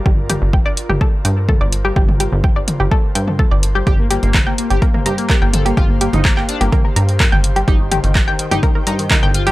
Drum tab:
HH |--x---x---x---x-|--x---x---x---x-|x-xxx-xxx-xxx-xx|x-xxx-xxx-xxx-xx|
CP |----------------|----------------|----x-------x---|----xx------x---|
T2 |--o----o----o---|-o----o----o----|----o----o----o-|---o----o----o--|
BD |o---o---o---o---|o---o---o---o---|o---o---o---o---|o---o---o---o---|

HH |x-xxx-xxx-xxx-xx|
CP |----x-------x---|
T2 |--o----o----o---|
BD |o---o---o---o---|